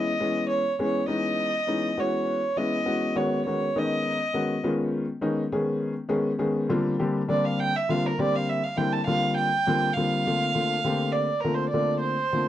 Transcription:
Already playing: E3 G#3 B3 C#4 E4 D#5
0.20 E3 G#3 B3 C#4 G#4
0.49 C#5
0.79 E3 G#3 B3 C#4 G#4 C#5
1.07 E3 G#3 B3 C#4 D#4 D#5
1.67 E3 G#3 B3 C#4 D#4
1.97 E3 G#3 B3 C#4 F#4 C#5
2.57 E3 G#3 B3 C#4 E4 D#5
2.85 E3 G#3 B3 C#4 F#4
3.16 D#3 G#3 B3 C#4 F#4 C#5
3.45 D#3 G#3 B3 C#4 F#4 C#5
3.76 D#3 G#3 B3 C#4 D#4 D#5
4.34 D#3 G#3 B3 C#4 F#4
4.64 D#3 G#3 B3 C#4 F4
5.21 D#3 G#3 B3 C#4 D#4
5.52 D#3 G#3 B3 C#4 G#4
6.09 D#3 G#3 B3 C#4 G#4
6.39 D#3 G#3 B3 C#4 G#4
6.69 D3 G3 A#3 C4 F4
6.99 D3 G3 A#3 C4 G4
7.28 D3 G3 A#3 C4 D4 D5
7.45 F5
7.60 G5
7.76 E5
7.89 D3 G3 A#3 C4 F4 F5
8.06 A#4
8.18 D3 G3 A#3 C4 G4 D5
8.35 F5
8.49 E5
8.64 F5
8.77 D3 G3 A#3 C4 E4 G5
8.92 A5
9.06 D3 G3 A#3 C4 F4 F5
9.36 G5
9.67 D3 G3 A#3 C4 F4
9.93 D3 G3 A#3 C4 F5
9.97 F4
10.27 D3 A3 A#3 C4 F4
10.54 D3 A3 A#3 C4 F4
10.84 D3 A3 A#3 C4 G4
11.12 D5
11.41 D3 A3 A#3 F4 A#4
11.45 C4
11.54 C5
11.69 D5
11.74 D3 A3 A#3 C4 F4
11.99 C5
12.33 D3 A3 A#3 C4 F4

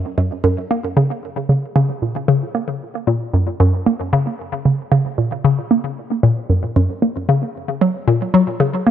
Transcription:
Already playing: F#2
0.18 F#2
0.44 F#2
0.71 A#3
0.97 C#3
1.49 C#3
1.76 C#3
2.02 A#2
2.28 C#3
2.55 A#3
3.07 A#2
3.34 F#2
3.60 F#2
3.86 A#3
4.13 C#3
4.65 C#3
4.92 C#3
5.18 A#2
5.45 C#3
5.71 A#3
6.23 A#2
6.50 F#2
6.76 F#2
7.02 A#3
7.29 C#3
7.81 F#3
8.08 A#2
8.34 F#3
8.60 C#3
8.87 A#3

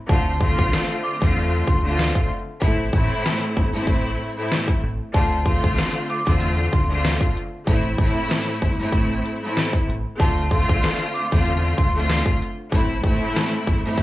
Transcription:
0.08 D2 D3 A3 C4 F4 A5, kick
0.40 D3 A3 C4 F4 C6, kick
0.59 C2, kick
0.73 snare
1.03 D6
1.20 E2 D3 A3 C4 F4, kick
1.67 D2 C6, kick
1.84 D3 A3 C4 F4
1.99 snare
2.15 kick
2.61 A1 A2 A3 C4 E4, kick
2.93 A1 A2 A3 C4 E4, kick
3.26 snare
3.57 G1, kick
3.74 A2 A3 C4 E4
3.87 A1, kick
4.36 A2 A3 C4 E4
4.52 snare
4.68 kick
4.83 A1
5.13 D2 D3 A3 C4 F4 A5, kick, closed hi-hat
5.32 closed hi-hat
5.45 D3 A3 C4 F4 C6, kick, closed hi-hat
5.64 C2, kick
5.78 snare, closed hi-hat
6.10 D6, closed hi-hat
6.26 E2 D3 A3 C4 F4, kick, closed hi-hat
6.40 closed hi-hat
6.72 D2 C6, kick, closed hi-hat
6.90 D3 A3 C4 F4
7.05 snare, closed hi-hat
7.21 kick
7.37 closed hi-hat
7.67 A1 A2 A3 C4 E4, kick, closed hi-hat
7.85 closed hi-hat
7.98 A1 A2 A3 C4 E4, kick, closed hi-hat
8.30 snare, closed hi-hat
8.62 G1, kick, closed hi-hat
8.79 A2 A3 C4 E4, closed hi-hat
8.93 A1, kick, closed hi-hat
9.26 closed hi-hat
9.42 A2 A3 C4 E4
9.57 snare, closed hi-hat
9.73 kick
9.89 A1, closed hi-hat
10.18 D2 D3 A3 C4 F4 A5, kick, closed hi-hat
10.38 closed hi-hat
10.50 D3 A3 C4 F4 C6, kick, closed hi-hat
10.69 C2, kick
10.83 snare, closed hi-hat
11.14 D6, closed hi-hat
11.31 E2 D3 A3 C4 F4, kick, closed hi-hat
11.46 closed hi-hat
11.77 D2 C6, kick, closed hi-hat
11.95 D3 A3 C4 F4
12.10 snare, closed hi-hat
12.26 kick
12.42 closed hi-hat
12.72 A1 A2 A3 C4 E4, kick, closed hi-hat
12.90 closed hi-hat
13.04 A1 A2 A3 C4 E4, kick, closed hi-hat
13.36 snare, closed hi-hat
13.67 G1, kick, closed hi-hat
13.84 A2 A3 C4 E4, closed hi-hat
13.98 A1, kick, closed hi-hat

